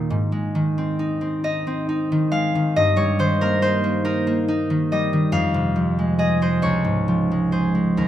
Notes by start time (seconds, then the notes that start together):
Already playing: D#2 A#2 D#3 A#3 D#4 D#5 G5
0.10 G#2
0.32 G#3
0.55 D#3
0.78 C4
0.99 D#4
1.21 C4
1.44 D#4 D#5
1.67 C4
1.89 D#4
2.12 D#3
2.31 G#3 F5
2.55 D#3
2.76 G2 D#5
2.96 G3 C#5
3.19 D#3 C5
3.41 A#3 A#4
3.62 D#4 C5
3.84 A#3
4.05 D#4 A#4
4.27 A#3
4.48 D#4
4.70 D#3
4.92 G3 D#5
5.13 D#3
5.32 F2 F5
5.54 C3
5.76 F3
5.99 G#3
6.19 G#4 D#5
6.42 G#3 C5
6.62 C#2 C#5
6.85 G#2
7.08 F3
7.31 G#3
7.52 G#4 C5
7.75 G#3
7.97 D#2 A#4